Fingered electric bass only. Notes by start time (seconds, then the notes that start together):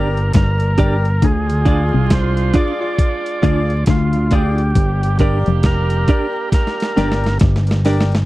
Already playing: G1
0.35 G1
1.23 D2
1.94 C2
3.43 D2
3.88 D2
4.76 G1
5.47 F1
6.97 G1
7.41 G1